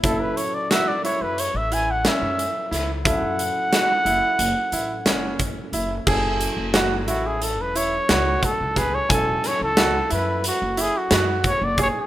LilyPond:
<<
  \new Staff \with { instrumentName = "Trumpet" } { \time 9/8 \key fis \minor \tempo 4. = 60 a'16 b'16 cis''16 d''16 e''16 d''16 cis''16 b'16 cis''16 e''16 gis''16 fis''16 e''4 r8 | fis''2.~ fis''8 r4 | r4. fis'16 gis'16 a'16 b'16 cis''4 a'8 b'16 cis''16 | a'8 cis''16 a'8. b'8 fis'8 gis'16 fis'8 r16 cis''16 d''16 cis''16 a'16 | }
  \new Staff \with { instrumentName = "Grand piano" } { \time 9/8 \key fis \minor e'4 fis'8 e'4 e'8 cis'4 e'8 | e'4 fis'8 e'4 e'8 cis'4 e'8 | gis'4 fis'8 e'4 e'8 fis'4 gis'8 | gis''4 fis'8 e'4 e'8 fis'4 gis'8 | }
  \new Staff \with { instrumentName = "Tine electric piano" } { \time 9/8 \key fis \minor <fis cis' e' a'>1~ <fis cis' e' a'>8 | <fis cis' e' a'>1~ <fis cis' e' a'>8 | <fis cis' e' a'>1~ <fis cis' e' a'>8 | <fis cis' e' a'>1~ <fis cis' e' a'>8 | }
  \new Staff \with { instrumentName = "Upright bass" } { \clef bass \time 9/8 \key fis \minor fis,,8 r4 r16 fis,8 a,,4 fis,8 r16 cis,8~ | cis,16 fis,8 r8. fis,,16 r16 fis,,16 r16 a,,8 fis,,4 fis,,8 | fis,,8. fis,,8. a,,8. e,,8. cis,8 r16 cis,8. | e,,8 r16 cis,8. fis,8. fis,,8 r16 fis,8. fis,,8 r16 | }
  \new DrumStaff \with { instrumentName = "Drums" } \drummode { \time 9/8 <hh bd>8 hh8 <hh sn>8 hh8 hh8 hh8 <hh sn>8 hh8 <hh sn>8 | <hh bd>8 hh8 <hh sn>8 hh8 hh8 hh8 <hh sn>8 <hh bd>8 hh8 | <cymc bd>8 hh8 <hh sn>8 hh8 hh8 hh8 <hh sn>8 <hh bd>8 <hh bd sn>8 | <hh bd>8 <hh sn>8 <hh sn>8 hh8 hh8 hh8 <hh sn>8 <hh bd>8 <hh bd>8 | }
>>